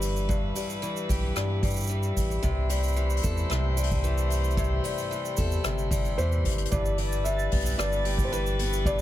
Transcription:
0.00 0.52 G1 loud
0.00 0.27 G2 medium
0.00 0.82 E3 medium
0.00 0.55 G3 medium
0.00 2.39 G3 medium
0.00 6.68 E4 medium
0.00 1.09 G4 medium
0.00 2.39 B4 medium
0.00 open hi-hat medium
0.00 cabasa medium
0.16 cabasa soft
0.29 1.35 G2 medium
0.29 kick medium
0.29 cabasa medium
0.55 1.63 G3 medium
0.55 open hi-hat medium
0.55 cabasa medium
0.70 cabasa soft
0.82 1.89 E3 medium
0.82 cabasa soft
0.96 cabasa soft
1.09 1.31 B1 medium
1.09 3.23 G4 medium
1.09 kick medium
1.09 open hi-hat medium
1.09 cabasa medium
1.36 2.48 G2 medium
1.36 2.13 G2 medium
1.36 cross-stick medium
1.36 cabasa medium
1.63 2.69 G3 medium
1.63 kick loud
1.63 open hi-hat medium
1.63 cabasa soft
1.67 cabasa soft
1.71 cabasa soft
1.74 cabasa medium
1.76 cabasa soft
1.76 cabasa medium
1.80 cabasa medium
1.84 cabasa medium
1.87 2.96 E3 medium
1.87 cabasa medium
1.90 cabasa medium
2.03 cabasa soft
2.17 2.38 A1 loud
2.17 kick medium
2.17 open hi-hat medium
2.17 cabasa medium
2.31 cabasa soft
2.43 3.20 C2 medium
2.43 3.48 C3 medium
2.43 6.68 A3 medium
2.43 6.68 C5 medium
2.43 kick medium
2.43 cabasa soft
2.69 3.76 G3 medium
2.69 open hi-hat medium
2.69 cabasa medium
2.83 cabasa soft
2.88 cabasa soft
2.92 4.03 E3 medium
2.92 cabasa soft
2.97 cabasa medium
3.10 cabasa soft
3.17 open hi-hat medium
3.23 3.46 E2 medium
3.23 5.37 A4 medium
3.23 kick loud
3.23 cabasa medium
3.37 cabasa soft
3.50 4.81 C2 loud
3.50 4.56 C3 medium
3.50 cross-stick medium
3.50 cabasa soft
3.77 4.84 G3 medium
3.77 cabasa medium
3.83 open hi-hat medium
3.91 kick medium
3.91 cabasa soft
4.04 5.11 E3 medium
4.04 cabasa medium
4.18 cabasa soft
4.30 open hi-hat medium
4.30 cabasa medium
4.44 cabasa soft
4.51 cabasa soft
4.57 5.63 C3 medium
4.57 kick loud
4.57 cabasa soft
4.57 cabasa medium
4.84 5.91 G3 medium
4.84 open hi-hat medium
4.84 cabasa medium
4.98 cabasa soft
5.11 6.18 E3 medium
5.11 cabasa medium
5.25 cabasa soft
5.37 5.60 E2 medium
5.37 6.77 A4 medium
5.37 kick medium
5.37 open hi-hat medium
5.37 cabasa medium
5.52 cabasa soft
5.64 6.18 G1 medium
5.64 6.77 C3 medium
5.64 cross-stick medium
5.64 cabasa medium
5.78 cabasa soft
5.91 6.98 G3 medium
5.91 kick loud
5.91 open hi-hat loud
5.91 cabasa medium
6.05 cabasa soft
6.18 6.46 E2 loud
6.18 7.25 E3 medium
6.18 6.68 C5 medium
6.18 cabasa medium
6.32 cabasa soft
6.44 6.67 G1 medium
6.44 kick medium
6.44 closed hi-hat medium
6.44 open hi-hat medium
6.51 closed hi-hat medium
6.58 closed hi-hat medium
6.65 closed hi-hat medium
6.71 7.49 G1 medium
6.71 7.78 G2 medium
6.71 9.02 G3 medium
6.71 9.02 E4 medium
6.71 9.02 B4 medium
6.71 7.27 D5 medium
6.71 9.02 A6 medium
6.71 kick loud
6.71 cabasa medium
6.85 cabasa medium
6.98 9.02 G3 medium
6.98 open hi-hat medium
7.12 cabasa medium
7.24 8.32 E3 medium
7.24 7.80 E5 medium
7.24 cabasa medium
7.39 cabasa soft
7.52 7.74 B1 medium
7.52 8.58 B3 medium
7.52 kick medium
7.52 open hi-hat medium
7.61 open hi-hat medium
7.66 open hi-hat medium
7.66 cabasa medium
7.78 9.02 G1 loud
7.78 8.85 G2 medium
7.78 8.22 D5 medium
7.78 cross-stick medium
7.78 cabasa medium
7.92 cabasa soft
8.05 9.02 G4 medium
8.05 open hi-hat loud
8.18 kick loud
8.18 cabasa medium
8.24 8.32 C5 medium
8.32 9.02 E3 medium
8.32 8.87 B4 medium
8.32 cabasa medium
8.46 cabasa soft
8.59 9.02 B3 medium
8.59 open hi-hat medium
8.73 cabasa medium
8.85 9.02 G2 medium
8.85 9.02 D5 loud
8.85 kick loud
8.85 cabasa medium

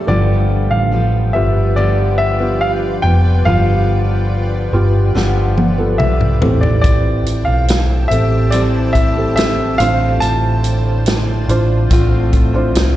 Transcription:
0.00 0.10 G1 soft
0.00 0.08 G2 soft
0.00 0.10 D4 medium
0.00 0.08 F4 medium
0.07 0.67 G1 medium
0.07 0.92 G2 medium
0.07 1.31 G2 medium
0.07 0.93 D3 medium
0.07 0.90 F3 medium
0.07 0.92 G3 medium
0.07 1.28 B3 medium
0.07 0.93 B3 medium
0.07 6.37 F4 medium
0.07 1.28 F4 soft
0.07 1.29 G4 medium
0.07 0.94 G4 medium
0.07 6.37 B4 medium
0.07 6.37 D5 medium
0.07 0.73 D5 medium
0.07 6.37 G5 medium
0.71 1.31 A1 medium
0.71 1.36 F5 medium
0.91 1.76 F3 soft
0.91 1.77 G3 soft
0.91 1.77 B3 soft
0.91 1.78 G4 soft
1.33 3.00 G1 medium
1.33 2.35 B3 medium
1.33 2.35 F4 soft
1.33 2.36 G4 medium
1.33 1.78 E5 medium
1.76 3.03 G2 medium
1.76 3.04 D3 medium
1.76 3.04 F3 medium
1.76 3.05 G3 medium
1.76 3.03 B3 medium
1.76 3.03 G4 medium
1.76 2.20 D5 medium
2.18 2.62 E5 medium
2.40 3.41 B3 medium
2.40 3.41 F4 medium
2.40 3.42 G4 medium
2.61 2.71 F5 medium
3.02 3.43 F1 medium
3.02 3.47 G3 soft
3.02 3.47 B3 soft
3.02 3.46 G4 soft
3.02 3.47 G5 medium
3.06 3.46 F3 soft
3.45 4.69 G1 medium
3.45 5.13 G2 medium
3.45 4.69 G2 medium
3.45 5.14 D3 medium
3.45 5.14 F3 medium
3.45 5.16 G3 medium
3.45 4.66 B3 medium
3.45 4.67 F4 medium
3.45 4.67 G4 medium
3.45 4.69 F5 medium
3.49 5.15 B3 medium
3.49 5.17 G4 medium
4.73 5.12 G1 medium
4.73 5.73 B3 medium
4.73 5.74 F4 medium
4.73 5.74 G4 medium
5.14 6.00 G1 medium
5.14 6.42 G2 medium
5.14 6.42 D3 medium
5.14 6.42 F3 medium
5.14 6.42 G3 medium
5.14 6.41 B3 medium
5.14 6.48 G4 medium
5.14 snare medium
5.58 high tom medium
5.78 6.39 B3 medium
5.78 6.42 F4 medium
5.78 6.41 A4 medium
5.98 6.39 B1 medium
5.98 6.64 E5 medium
5.98 mid tom medium
6.21 mid tom medium
6.41 7.44 A1 medium
6.41 7.65 A2 medium
6.41 8.51 A2 soft
6.41 8.51 E3 soft
6.41 8.52 G3 soft
6.41 6.48 B3 soft
6.41 8.53 C4 soft
6.41 9.76 G4 medium
6.41 8.02 G4 medium
6.41 8.03 A4 medium
6.41 12.96 C5 medium
6.41 9.77 G5 medium
6.41 12.96 A5 medium
6.41 floor tom medium
6.47 8.05 C4 medium
6.61 6.80 D5 medium
6.61 floor tom medium
6.81 7.42 D5 medium
6.81 kick medium
6.81 closed hi-hat medium
7.26 closed hi-hat medium
7.45 8.07 B1 medium
7.45 8.12 F5 medium
7.68 snare loud
7.68 closed hi-hat medium
8.08 9.76 A1 medium
8.08 9.11 C4 medium
8.08 9.11 G4 medium
8.08 9.12 A4 medium
8.08 8.53 E5 medium
8.08 closed hi-hat medium
8.51 9.79 A2 medium
8.51 9.80 E3 medium
8.51 9.80 G3 medium
8.51 9.79 C4 medium
8.51 9.78 E4 medium
8.51 8.60 D5 medium
8.51 closed hi-hat medium
8.93 9.33 E5 medium
8.93 kick soft
8.93 closed hi-hat soft
9.16 9.80 C4 medium
9.16 9.80 G4 medium
9.16 9.81 A4 medium
9.36 9.80 E5 medium
9.36 snare medium
9.36 closed hi-hat medium
9.78 10.19 A1 medium
9.78 11.03 A2 medium
9.78 11.90 D3 soft
9.78 11.91 A3 medium
9.78 11.92 C4 medium
9.78 11.40 D4 medium
9.78 11.90 F4 medium
9.78 12.96 F4 medium
9.78 11.41 F4 medium
9.78 11.41 C5 medium
9.78 11.47 D5 medium
9.78 10.23 F5 medium
9.78 closed hi-hat medium
9.83 11.89 A2 soft
10.20 11.45 A1 loud
10.20 11.44 A5 loud
10.20 closed hi-hat medium
10.64 closed hi-hat medium
11.06 snare loud
11.06 closed hi-hat medium
11.48 11.88 A1 medium
11.48 12.49 D4 medium
11.48 12.50 F4 medium
11.48 12.50 C5 medium
11.48 12.96 E5 medium
11.48 closed hi-hat medium
11.90 12.72 A1 medium
11.90 12.96 A2 medium
11.90 12.96 D3 medium
11.90 12.96 A3 medium
11.90 12.96 C4 medium
11.90 12.96 F4 medium
11.90 kick medium
11.90 closed hi-hat medium
12.33 kick medium
12.33 closed hi-hat soft
12.54 12.96 D4 medium
12.54 12.96 F4 medium
12.54 12.96 C5 medium
12.75 12.96 C2 medium
12.75 snare loud
12.75 closed hi-hat medium

